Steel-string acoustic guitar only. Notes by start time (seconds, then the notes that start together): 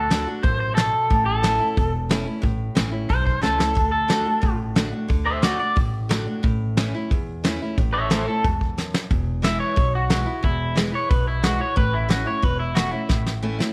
0.10 D3 A3 D4 F#4
0.27 D4 F#4
0.43 F#2
0.77 B2
1.10 A2
1.43 E3 A3 C#4 E4
1.60 C#4 E4
1.77 E2
2.09 E3 A3 C#4 E4
2.25 C#4 E4
2.42 A2
2.75 E3 A3 C#4 E4
2.92 C#4 E4
3.09 E2
3.42 E3 A3 C#4 E4
3.58 C#4 E4
3.75 D3
4.08 D3 A3 D4 F#4
4.26 D4 F#4
4.42 A2
4.76 D3 A3 D4 F#4
4.91 D4 F#4
5.08 D3
5.42 D3 A3 D4 F#4
5.59 D4 F#4
5.76 A2
6.09 D3 A3 D4 F#4
6.26 D4 F#4
6.43 A2
6.77 E3 A3 C#4 E4
6.94 C#4 E4
7.12 E2
7.44 E3 A3 C#4 E4
7.62 C#4 E4
7.78 A2
8.10 E3 A3 C#4 E4
8.28 C#4 E4
8.45 G#2
8.78 F#2
9.11 E2
9.42 E3 G#3 B3 E4
9.76 B2
10.10 E3 G#3 B3 E4
10.26 B3 E4
10.43 E2
10.75 E3 G#3 B3 E4
10.92 B3 E4
11.11 B2
11.43 E3 G#3 B3 E4
11.58 B3 E4
11.76 A2
12.09 E3 A3 C#4 E4
12.26 C#4 E4
12.42 E2
12.75 E3 A3 C#4 E4
12.91 C#4 E4
13.09 A2
13.42 E3 A3 C#4 E4
13.59 C#4 E4